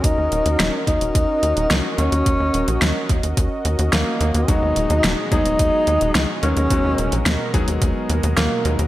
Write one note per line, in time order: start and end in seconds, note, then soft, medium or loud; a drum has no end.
0.00 0.15 D#2 loud
0.00 4.44 C#4 medium
0.00 0.76 D#4 loud
0.00 8.87 F#4 medium
0.00 4.44 A#4 medium
0.00 8.87 D#5 medium
0.00 kick loud
0.04 closed hi-hat medium
0.18 0.29 D#2 medium
0.32 0.43 D#1 medium
0.32 closed hi-hat medium
0.46 0.57 D#2 medium
0.46 closed hi-hat medium
0.59 0.71 D#1 loud
0.59 snare loud
0.59 closed hi-hat medium
0.87 0.98 D#2 medium
0.87 1.87 D#4 loud
0.87 kick loud
0.87 closed hi-hat medium
1.01 1.12 D#1 medium
1.01 closed hi-hat medium
1.15 1.26 D#2 loud
1.15 kick loud
1.15 closed hi-hat medium
1.43 1.54 D#2 medium
1.43 closed hi-hat medium
1.57 1.68 D#1 medium
1.57 closed hi-hat medium
1.70 1.82 C#2 loud
1.70 snare loud
1.70 closed hi-hat medium
1.98 2.09 D#2 medium
1.98 2.98 C#4 loud
1.98 closed hi-hat medium
2.12 2.23 D#2 medium
2.12 closed hi-hat medium
2.26 2.37 D#2 loud
2.26 kick loud
2.26 closed hi-hat medium
2.40 2.51 D#2 medium
2.54 2.65 D#1 medium
2.54 closed hi-hat medium
2.68 2.79 A#1 medium
2.68 closed hi-hat medium
2.82 2.93 D#2 loud
2.82 snare loud
2.82 closed hi-hat medium
3.09 3.21 D#2 loud
3.09 kick loud
3.09 closed hi-hat medium
3.23 3.34 D#2 medium
3.23 closed hi-hat medium
3.37 3.48 D#2 loud
3.37 kick loud
3.37 closed hi-hat medium
3.65 3.76 D#2 medium
3.65 closed hi-hat medium
3.79 3.90 D#2 medium
3.79 closed hi-hat medium
3.93 4.04 D#2 loud
3.93 4.50 A#3 medium
3.93 snare loud
3.93 closed hi-hat medium
4.21 4.32 D#2 medium
4.21 closed hi-hat medium
4.34 4.46 D#2 medium
4.34 closed hi-hat medium
4.48 4.59 D#2 loud
4.48 8.87 B2 medium
4.48 5.28 F#3 medium
4.48 5.28 G#3 medium
4.48 5.28 B3 medium
4.48 5.21 D#4 loud
4.48 5.28 D#4 medium
4.48 5.28 F#4 medium
4.48 6.68 G#4 medium
4.48 kick loud
4.48 closed hi-hat medium
4.62 4.73 D#2 medium
4.76 4.87 D#1 medium
4.76 closed hi-hat medium
4.90 5.01 D#2 medium
4.90 closed hi-hat medium
5.04 5.15 D#1 loud
5.04 snare loud
5.04 closed hi-hat medium
5.32 5.43 D#2 medium
5.32 6.39 F#3 medium
5.32 6.39 G#3 medium
5.32 6.39 B3 medium
5.32 6.32 D#4 loud
5.32 6.39 D#4 medium
5.32 6.39 G#4 medium
5.32 kick loud
5.32 closed hi-hat medium
5.46 5.57 D#1 medium
5.46 closed hi-hat medium
5.59 5.71 D#2 loud
5.59 kick loud
5.59 closed hi-hat medium
5.87 5.98 D#2 medium
5.87 closed hi-hat medium
6.01 6.12 D#1 medium
6.01 closed hi-hat medium
6.15 6.26 C#2 loud
6.15 snare loud
6.15 closed hi-hat medium
6.43 6.54 D#2 medium
6.43 6.67 F#3 medium
6.43 6.67 G#3 medium
6.43 6.67 B3 medium
6.43 7.43 C#4 loud
6.43 6.67 D#4 medium
6.43 6.67 A#4 medium
6.43 closed hi-hat medium
6.57 6.68 D#2 medium
6.57 closed hi-hat medium
6.70 6.82 D#2 loud
6.70 7.51 F#3 medium
6.70 7.51 G#3 medium
6.70 7.51 B3 medium
6.70 7.51 D#4 medium
6.70 7.51 F#4 medium
6.70 8.87 A#4 medium
6.70 kick loud
6.70 closed hi-hat medium
6.85 6.96 D#2 medium
6.98 7.10 D#1 medium
6.98 closed hi-hat medium
7.12 7.23 A#1 medium
7.12 closed hi-hat medium
7.26 7.37 D#2 loud
7.26 snare loud
7.26 closed hi-hat medium
7.54 7.65 D#2 medium
7.54 8.62 F#3 medium
7.54 8.62 G#3 medium
7.54 8.62 B3 medium
7.54 8.62 D#4 medium
7.54 8.62 G#4 medium
7.54 kick loud
7.54 closed hi-hat medium
7.68 7.79 D#2 medium
7.68 closed hi-hat medium
7.82 7.93 D#2 loud
7.82 kick loud
7.82 closed hi-hat medium
8.09 8.21 D#2 medium
8.09 closed hi-hat medium
8.23 8.35 D#2 medium
8.23 closed hi-hat medium
8.37 8.48 D#2 loud
8.37 8.74 A#3 medium
8.37 snare loud
8.37 closed hi-hat medium
8.65 8.76 D#2 medium
8.65 8.87 F#3 medium
8.65 8.87 G#3 medium
8.65 8.87 B3 medium
8.65 8.87 D#4 medium
8.65 8.87 A#4 medium
8.65 closed hi-hat medium
8.79 8.87 D#2 medium
8.79 closed hi-hat medium